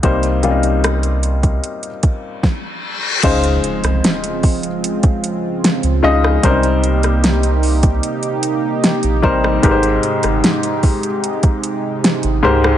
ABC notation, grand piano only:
X:1
M:4/4
L:1/8
Q:1/4=75
K:Cphr
V:1 name="Grand piano"
[C,G,B,Ec] [C,G,B,DEF]4 z3 | [D,A,EFc]4 z3 [D,A,EFe] | [C,G,DEBc]4 z3 [C,G,EBc] | [A,,A,GB=Bc]4 z3 [A,,A,G_Bc] |]